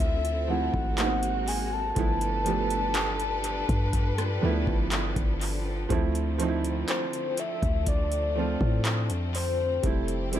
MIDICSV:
0, 0, Header, 1, 6, 480
1, 0, Start_track
1, 0, Tempo, 983607
1, 960, Time_signature, 4, 2, 24, 8
1, 5074, End_track
2, 0, Start_track
2, 0, Title_t, "Soft synth lead"
2, 0, Program_c, 0, 80
2, 0, Note_on_c, 0, 76, 110
2, 245, Note_on_c, 0, 78, 107
2, 252, Note_off_c, 0, 76, 0
2, 724, Note_on_c, 0, 80, 108
2, 731, Note_off_c, 0, 78, 0
2, 846, Note_on_c, 0, 81, 117
2, 854, Note_off_c, 0, 80, 0
2, 2283, Note_off_c, 0, 81, 0
2, 3366, Note_on_c, 0, 72, 99
2, 3609, Note_on_c, 0, 76, 116
2, 3616, Note_off_c, 0, 72, 0
2, 3845, Note_off_c, 0, 76, 0
2, 3847, Note_on_c, 0, 74, 102
2, 4304, Note_off_c, 0, 74, 0
2, 4564, Note_on_c, 0, 72, 119
2, 5023, Note_off_c, 0, 72, 0
2, 5074, End_track
3, 0, Start_track
3, 0, Title_t, "String section"
3, 0, Program_c, 1, 48
3, 0, Note_on_c, 1, 50, 82
3, 0, Note_on_c, 1, 53, 94
3, 0, Note_on_c, 1, 60, 81
3, 0, Note_on_c, 1, 69, 81
3, 0, Note_on_c, 1, 76, 80
3, 461, Note_off_c, 1, 69, 0
3, 465, Note_off_c, 1, 50, 0
3, 465, Note_off_c, 1, 53, 0
3, 465, Note_off_c, 1, 76, 0
3, 480, Note_on_c, 1, 56, 78
3, 481, Note_on_c, 1, 66, 90
3, 941, Note_off_c, 1, 60, 0
3, 956, Note_off_c, 1, 56, 0
3, 956, Note_off_c, 1, 66, 0
3, 960, Note_on_c, 1, 53, 76
3, 961, Note_on_c, 1, 62, 79
3, 961, Note_on_c, 1, 69, 81
3, 962, Note_on_c, 1, 55, 86
3, 962, Note_on_c, 1, 71, 92
3, 2861, Note_off_c, 1, 69, 0
3, 2862, Note_off_c, 1, 55, 0
3, 2862, Note_off_c, 1, 62, 0
3, 2862, Note_off_c, 1, 71, 0
3, 2880, Note_on_c, 1, 57, 72
3, 2881, Note_on_c, 1, 50, 84
3, 2881, Note_on_c, 1, 60, 76
3, 4781, Note_off_c, 1, 50, 0
3, 4781, Note_off_c, 1, 53, 0
3, 4781, Note_off_c, 1, 57, 0
3, 4799, Note_on_c, 1, 67, 78
3, 4800, Note_on_c, 1, 53, 86
3, 4800, Note_on_c, 1, 69, 93
3, 5074, Note_off_c, 1, 53, 0
3, 5074, Note_off_c, 1, 60, 0
3, 5074, Note_off_c, 1, 67, 0
3, 5074, Note_off_c, 1, 69, 0
3, 5074, End_track
4, 0, Start_track
4, 0, Title_t, "Felt piano"
4, 0, Program_c, 2, 0
4, 0, Control_c, 2, 64, 127
4, 0, Note_on_c, 2, 53, 92
4, 0, Note_on_c, 2, 57, 84
4, 0, Note_on_c, 2, 60, 86
4, 0, Note_on_c, 2, 64, 95
4, 0, Note_on_c, 2, 65, 103
4, 124, Note_off_c, 2, 53, 0
4, 127, Note_off_c, 2, 57, 0
4, 130, Note_off_c, 2, 60, 0
4, 133, Note_off_c, 2, 65, 0
4, 233, Note_on_c, 2, 53, 71
4, 240, Note_on_c, 2, 57, 61
4, 245, Note_on_c, 2, 60, 63
4, 250, Note_off_c, 2, 64, 0
4, 250, Note_on_c, 2, 64, 76
4, 474, Note_on_c, 2, 54, 81
4, 477, Note_off_c, 2, 53, 0
4, 478, Note_on_c, 2, 58, 77
4, 480, Note_off_c, 2, 57, 0
4, 483, Note_off_c, 2, 60, 0
4, 484, Note_on_c, 2, 59, 61
4, 485, Note_off_c, 2, 64, 0
4, 487, Control_c, 2, 64, 0
4, 491, Note_on_c, 2, 63, 87
4, 514, Note_off_c, 2, 59, 0
4, 517, Note_on_c, 2, 60, 77
4, 586, Control_c, 2, 64, 127
4, 901, Note_off_c, 2, 54, 0
4, 903, Note_off_c, 2, 58, 0
4, 909, Note_off_c, 2, 63, 0
4, 923, Note_off_c, 2, 60, 0
4, 953, Note_on_c, 2, 53, 77
4, 959, Note_on_c, 2, 57, 68
4, 966, Control_c, 2, 64, 0
4, 966, Note_on_c, 2, 59, 67
4, 971, Note_on_c, 2, 64, 87
4, 1049, Control_c, 2, 64, 127
4, 1169, Note_off_c, 2, 53, 0
4, 1172, Note_off_c, 2, 57, 0
4, 1175, Note_off_c, 2, 59, 0
4, 1177, Note_off_c, 2, 64, 0
4, 1194, Note_on_c, 2, 53, 80
4, 1201, Note_on_c, 2, 57, 73
4, 1206, Note_on_c, 2, 59, 68
4, 1211, Note_on_c, 2, 67, 82
4, 2045, Note_off_c, 2, 53, 0
4, 2048, Note_off_c, 2, 57, 0
4, 2051, Note_off_c, 2, 59, 0
4, 2053, Note_off_c, 2, 67, 0
4, 2153, Note_on_c, 2, 53, 85
4, 2159, Note_on_c, 2, 57, 74
4, 2165, Note_on_c, 2, 59, 75
4, 2170, Note_on_c, 2, 64, 92
4, 2793, Note_off_c, 2, 53, 0
4, 2796, Note_off_c, 2, 57, 0
4, 2799, Note_off_c, 2, 59, 0
4, 2801, Note_off_c, 2, 64, 0
4, 2874, Note_on_c, 2, 53, 91
4, 2879, Note_on_c, 2, 57, 81
4, 2885, Note_on_c, 2, 60, 78
4, 2886, Control_c, 2, 64, 0
4, 2890, Note_on_c, 2, 64, 97
4, 2970, Control_c, 2, 64, 127
4, 3089, Note_off_c, 2, 53, 0
4, 3092, Note_off_c, 2, 57, 0
4, 3095, Note_off_c, 2, 60, 0
4, 3097, Note_off_c, 2, 64, 0
4, 3114, Note_on_c, 2, 53, 93
4, 3120, Note_on_c, 2, 57, 82
4, 3125, Note_on_c, 2, 60, 82
4, 3130, Note_on_c, 2, 63, 83
4, 3157, Note_off_c, 2, 63, 0
4, 3163, Note_on_c, 2, 64, 100
4, 3965, Note_off_c, 2, 53, 0
4, 3968, Note_off_c, 2, 57, 0
4, 3971, Note_off_c, 2, 60, 0
4, 3989, Note_off_c, 2, 64, 0
4, 4077, Note_on_c, 2, 53, 69
4, 4083, Note_on_c, 2, 57, 67
4, 4088, Note_on_c, 2, 60, 64
4, 4094, Note_on_c, 2, 65, 78
4, 4714, Note_off_c, 2, 53, 0
4, 4717, Note_off_c, 2, 57, 0
4, 4720, Note_off_c, 2, 60, 0
4, 4723, Note_off_c, 2, 65, 0
4, 4796, Note_on_c, 2, 55, 74
4, 4801, Note_on_c, 2, 57, 67
4, 4807, Control_c, 2, 64, 0
4, 4807, Note_on_c, 2, 60, 70
4, 4812, Note_on_c, 2, 64, 84
4, 4884, Control_c, 2, 64, 127
4, 5010, Note_off_c, 2, 55, 0
4, 5013, Note_off_c, 2, 57, 0
4, 5016, Note_off_c, 2, 60, 0
4, 5018, Note_off_c, 2, 64, 0
4, 5036, Note_on_c, 2, 55, 78
4, 5041, Note_on_c, 2, 56, 57
4, 5046, Note_on_c, 2, 60, 71
4, 5053, Note_on_c, 2, 64, 88
4, 5072, Note_off_c, 2, 56, 0
4, 5074, Note_off_c, 2, 55, 0
4, 5074, Note_off_c, 2, 60, 0
4, 5074, Note_off_c, 2, 64, 0
4, 5074, End_track
5, 0, Start_track
5, 0, Title_t, "808-style bass"
5, 0, Program_c, 3, 38
5, 0, Note_on_c, 3, 38, 101
5, 342, Note_off_c, 3, 38, 0
5, 360, Note_on_c, 3, 32, 99
5, 941, Note_off_c, 3, 32, 0
5, 960, Note_on_c, 3, 31, 109
5, 1781, Note_off_c, 3, 31, 0
5, 1801, Note_on_c, 3, 43, 106
5, 2146, Note_off_c, 3, 43, 0
5, 2162, Note_on_c, 3, 38, 106
5, 2276, Note_off_c, 3, 38, 0
5, 2280, Note_on_c, 3, 31, 104
5, 2511, Note_off_c, 3, 31, 0
5, 2520, Note_on_c, 3, 31, 100
5, 2866, Note_off_c, 3, 31, 0
5, 2881, Note_on_c, 3, 38, 104
5, 3341, Note_off_c, 3, 38, 0
5, 3722, Note_on_c, 3, 38, 98
5, 4182, Note_off_c, 3, 38, 0
5, 4201, Note_on_c, 3, 45, 108
5, 4441, Note_on_c, 3, 41, 100
5, 4448, Note_off_c, 3, 45, 0
5, 4782, Note_off_c, 3, 41, 0
5, 4801, Note_on_c, 3, 29, 113
5, 5074, Note_off_c, 3, 29, 0
5, 5074, End_track
6, 0, Start_track
6, 0, Title_t, "Drums"
6, 0, Note_on_c, 9, 36, 101
6, 0, Note_on_c, 9, 42, 71
6, 46, Note_off_c, 9, 42, 0
6, 49, Note_off_c, 9, 36, 0
6, 121, Note_on_c, 9, 42, 56
6, 169, Note_off_c, 9, 42, 0
6, 360, Note_on_c, 9, 36, 93
6, 409, Note_off_c, 9, 36, 0
6, 479, Note_on_c, 9, 42, 73
6, 480, Note_on_c, 9, 39, 109
6, 527, Note_off_c, 9, 42, 0
6, 529, Note_off_c, 9, 39, 0
6, 599, Note_on_c, 9, 42, 56
6, 647, Note_off_c, 9, 42, 0
6, 720, Note_on_c, 9, 46, 68
6, 769, Note_off_c, 9, 46, 0
6, 958, Note_on_c, 9, 42, 70
6, 960, Note_on_c, 9, 36, 116
6, 1007, Note_off_c, 9, 42, 0
6, 1009, Note_off_c, 9, 36, 0
6, 1079, Note_on_c, 9, 42, 58
6, 1128, Note_off_c, 9, 42, 0
6, 1200, Note_on_c, 9, 42, 72
6, 1249, Note_off_c, 9, 42, 0
6, 1320, Note_on_c, 9, 42, 50
6, 1369, Note_off_c, 9, 42, 0
6, 1437, Note_on_c, 9, 42, 73
6, 1442, Note_on_c, 9, 39, 125
6, 1486, Note_off_c, 9, 42, 0
6, 1491, Note_off_c, 9, 39, 0
6, 1560, Note_on_c, 9, 42, 49
6, 1608, Note_off_c, 9, 42, 0
6, 1678, Note_on_c, 9, 42, 77
6, 1727, Note_off_c, 9, 42, 0
6, 1800, Note_on_c, 9, 36, 97
6, 1801, Note_on_c, 9, 42, 50
6, 1849, Note_off_c, 9, 36, 0
6, 1850, Note_off_c, 9, 42, 0
6, 1919, Note_on_c, 9, 42, 74
6, 1920, Note_on_c, 9, 36, 98
6, 1967, Note_off_c, 9, 42, 0
6, 1968, Note_off_c, 9, 36, 0
6, 2042, Note_on_c, 9, 37, 94
6, 2042, Note_on_c, 9, 42, 58
6, 2090, Note_off_c, 9, 42, 0
6, 2091, Note_off_c, 9, 37, 0
6, 2280, Note_on_c, 9, 36, 94
6, 2329, Note_off_c, 9, 36, 0
6, 2399, Note_on_c, 9, 42, 73
6, 2400, Note_on_c, 9, 39, 107
6, 2448, Note_off_c, 9, 42, 0
6, 2449, Note_off_c, 9, 39, 0
6, 2520, Note_on_c, 9, 36, 99
6, 2520, Note_on_c, 9, 42, 56
6, 2569, Note_off_c, 9, 36, 0
6, 2569, Note_off_c, 9, 42, 0
6, 2642, Note_on_c, 9, 46, 69
6, 2691, Note_off_c, 9, 46, 0
6, 2881, Note_on_c, 9, 36, 114
6, 2881, Note_on_c, 9, 42, 67
6, 2930, Note_off_c, 9, 36, 0
6, 2930, Note_off_c, 9, 42, 0
6, 3001, Note_on_c, 9, 42, 57
6, 3050, Note_off_c, 9, 42, 0
6, 3121, Note_on_c, 9, 42, 71
6, 3170, Note_off_c, 9, 42, 0
6, 3243, Note_on_c, 9, 42, 49
6, 3291, Note_off_c, 9, 42, 0
6, 3358, Note_on_c, 9, 42, 69
6, 3363, Note_on_c, 9, 39, 126
6, 3407, Note_off_c, 9, 42, 0
6, 3412, Note_off_c, 9, 39, 0
6, 3481, Note_on_c, 9, 42, 53
6, 3530, Note_off_c, 9, 42, 0
6, 3599, Note_on_c, 9, 42, 80
6, 3647, Note_off_c, 9, 42, 0
6, 3721, Note_on_c, 9, 36, 96
6, 3722, Note_on_c, 9, 42, 50
6, 3770, Note_off_c, 9, 36, 0
6, 3771, Note_off_c, 9, 42, 0
6, 3838, Note_on_c, 9, 42, 75
6, 3840, Note_on_c, 9, 36, 99
6, 3887, Note_off_c, 9, 42, 0
6, 3889, Note_off_c, 9, 36, 0
6, 3961, Note_on_c, 9, 42, 58
6, 4009, Note_off_c, 9, 42, 0
6, 4200, Note_on_c, 9, 36, 98
6, 4249, Note_off_c, 9, 36, 0
6, 4319, Note_on_c, 9, 42, 70
6, 4320, Note_on_c, 9, 39, 111
6, 4368, Note_off_c, 9, 42, 0
6, 4369, Note_off_c, 9, 39, 0
6, 4439, Note_on_c, 9, 42, 55
6, 4488, Note_off_c, 9, 42, 0
6, 4561, Note_on_c, 9, 46, 70
6, 4610, Note_off_c, 9, 46, 0
6, 4799, Note_on_c, 9, 42, 72
6, 4800, Note_on_c, 9, 36, 111
6, 4848, Note_off_c, 9, 42, 0
6, 4849, Note_off_c, 9, 36, 0
6, 4920, Note_on_c, 9, 42, 56
6, 4969, Note_off_c, 9, 42, 0
6, 5040, Note_on_c, 9, 42, 73
6, 5074, Note_off_c, 9, 42, 0
6, 5074, End_track
0, 0, End_of_file